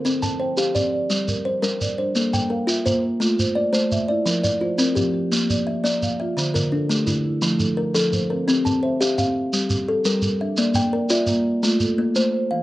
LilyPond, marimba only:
<<
  \new Staff \with { instrumentName = "Marimba" } { \time 12/8 \key c \mixolydian \tempo 4. = 114 c''8 r8 g''8 f''4 d''4 bes'4. d''4 | a'4 f''8 e''4 c''4 c''4. e''4 | bes'4 c''8 bes'4 g'4 d''4. f''4 | c''4 a'8 g'4 e'4 a'4. c''4 |
g'4 e''8 f''4. r8 g'4. bes'4 | d''4 d''8 e''4. r8 a'4. c''4 | }
  \new Staff \with { instrumentName = "Marimba" } { \time 12/8 \key c \mixolydian c'8 c'4 r8 c'4 g'8 r4 g4 d'8~ | d'8 bes4 r8 bes4 f'8 r4 a4 e'8~ | e'8 f4 r8 f4 c'8 r4 bes4 f'8~ | f'8 d4 r8 d4 a8 r4 f4 c'8~ |
c'8 c'4 r8 c'4 g'8 r4 g4 d'8~ | d'8 bes4 r8 bes4 f'8 r4 a4 e8 | }
>>